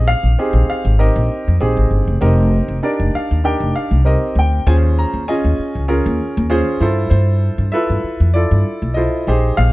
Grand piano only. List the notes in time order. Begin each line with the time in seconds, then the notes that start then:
Already playing: C4 D#4 G4 G#4
0.08 F5
0.39 C4 D#4 G4 G#4
0.70 F5
0.99 C4 D#4 G4 A#4 D#5
1.61 C4 D#4 G4 G#4
2.21 C4 D#4 G4 A#4
2.25 D#5
2.83 D4 D#4 G4 A#4 D5
3.15 F5
3.44 D4 D#4 G4 A#4 G5
3.76 F5
4.05 C4 D#4 G4 A#4 D#5
4.39 G5
4.67 C#4 F4 G#4 C5 G#5
4.99 A#5
5.28 C#4 F4 G#4 D#5 G#5
5.88 C#4 F4 G#4 A#4
6.50 C#4 F4 G#4 C5
6.81 E4 F4 A4 C5
7.10 C5
7.72 E4 F4 A4 B4 E5
8.34 E4 F4 A4 D5
8.94 E4 F4 A4 C5 D#5
9.28 D#4 G4 G#4 C5
9.57 F5